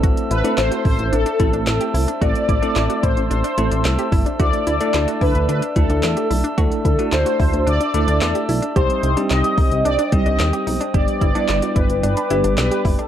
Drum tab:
HH |xxxxxxoxxxxxxxox|xxxxxxxxxxxxxxox|xxxxxxoxxxxxxxox|xxxxxxoxxxxxxxox|
CP |----x-------x---|----x-------x---|----x-------x---|----x-------x---|
SD |----o-------o---|----o-------o---|----o-------o---|----o-------o---|
BD |o-----o---o-----|o-o---o-------o-|o-----o---o-----|o-o---o---------|

HH |xxxxxxoxxxxxxxox|xxxxxxxxxxxxxxox|
CP |----x-------x---|----x-------x---|
SD |----o-------o---|----o-------o---|
BD |o-----o---o-----|o-o---o-------o-|